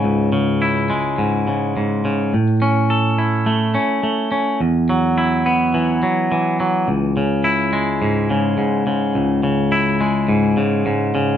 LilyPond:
\new Staff \with { instrumentName = "Clean electric guitar" } { \clef bass \time 4/4 \key cis \minor \tempo 4 = 105 <cis, gis, cis>8 cis8 e'8 gis8 gis,8 cis8 gis,8 cis8 | a,8 cis'8 a'8 e'8 a8 cis'8 a8 cis'8 | e,8 fis8 e'8 b8 e8 fis8 e8 fis8 | cis,8 cis8 e'8 gis8 gis,8 cis8 gis,8 cis8 |
cis,8 cis8 e'8 gis8 gis,8 cis8 gis,8 cis8 | }